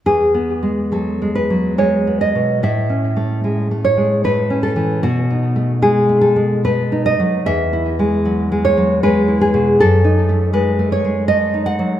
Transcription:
\new Staff \with { instrumentName = "Nylon-string guitar" } { \time 3/4 \key e \major \tempo 4 = 75 << { gis'4 a'8 b'8 cis''8 dis''8 | e''4. cis''8 b'8 a'8 | fis'4 gis'8 a'8 b'8 dis''8 | e''4. cis''8 b'8 gis'8 |
a'4 b'8 cis''8 dis''8 fis''8 | } \\ { \tuplet 3/2 { e,8 b8 gis8 fis8 gis8 fis8 gis8 b8 b,8 } | \tuplet 3/2 { a,8 cis'8 a8 gis8 a8 gis8 a8 cis'8 e8 } | \tuplet 3/2 { b,8 dis'8 a8 gis8 a8 gis8 a8 dis'8 fis8 } | \tuplet 3/2 { e,8 e'8 gis8 fis8 gis8 fis8 gis8 e'8 b,8 } |
\tuplet 3/2 { fis,8 dis'8 a8 gis8 a8 gis8 a8 dis'8 fis8 } | } >> }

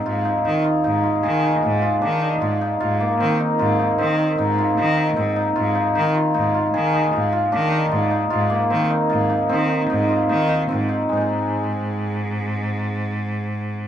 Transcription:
<<
  \new Staff \with { instrumentName = "Hammered dulcimer" } { \time 7/4 \key aes \major \tempo 4 = 153 f'8 ees'8 ees'8 f'8 ees'8 f'8 aes'8 ees'8 f'8 f'8 d'8 ees'8 f'8 ees'8 | f'8 bes8 c'8 ees'8 f'8 ees'8 c'8 ees'8 ees'8 f'8 ees'8 ees'8 c'8 ees'8 | f'8 ees'8 ees'8 f'8 ees'8 f'8 aes'8 ees'8 f'8 f'8 d'8 ees'8 f'8 ees'8 | f'8 bes8 c'8 ees'8 f'8 ees'8 c'8 ees'8 ees'8 f'8 ees'8 ees'8 c'8 ees'8 |
<aes c' ees' aes'>1.~ <aes c' ees' aes'>4 | }
  \new Staff \with { instrumentName = "Cello" } { \clef bass \time 7/4 \key aes \major aes,4 ees8 r8 aes,4 ees4 aes,4 ees4 aes,4 | aes,4 ees8 r8 aes,4 ees4 aes,4 ees4 aes,4 | aes,4 ees8 r8 aes,4 ees4 aes,4 ees4 aes,4 | aes,4 ees8 r8 aes,4 ees4 aes,4 ees4 aes,4 |
aes,1.~ aes,4 | }
>>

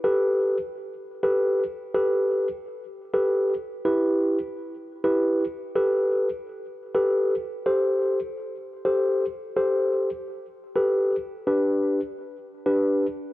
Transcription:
\new Staff \with { instrumentName = "Tine electric piano" } { \time 4/4 \key g \major \tempo 4 = 126 <g' a' b'>4 r4. <g' a' b'>4 r8 | <g' a' b'>4 r4. <g' a' b'>4 r8 | <e' g' b'>4 r4. <e' g' b'>4 r8 | <g' a' b'>4 r4. <g' a' b'>4 r8 |
<g' a' c''>4 r4. <g' a' c''>4 r8 | <g' a' c''>4 r4. <g' a' b'>4 r8 | <d' g' b'>4 r4. <d' g' b'>4 r8 | }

